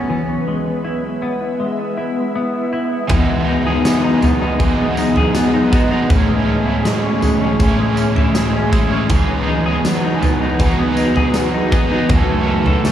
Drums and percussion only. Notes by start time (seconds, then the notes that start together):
3.10 kick, floor tom, tambourine
3.85 snare, tambourine
4.22 floor tom, tambourine
4.60 kick, floor tom, tambourine
4.97 tambourine
5.16 floor tom
5.35 snare, tambourine
5.73 kick, tambourine
6.10 kick, floor tom, tambourine
6.85 snare, tambourine
7.22 floor tom, tambourine
7.60 kick, floor tom, tambourine
7.97 tambourine
8.16 floor tom
8.35 snare, tambourine
8.73 kick, tambourine
9.10 kick, floor tom, tambourine
9.85 snare, tambourine
10.22 floor tom, tambourine
10.59 kick, floor tom, tambourine
10.97 tambourine
11.16 floor tom
11.34 snare, tambourine
11.72 kick, tambourine
12.09 kick, floor tom, tambourine
12.66 floor tom
12.85 snare, tambourine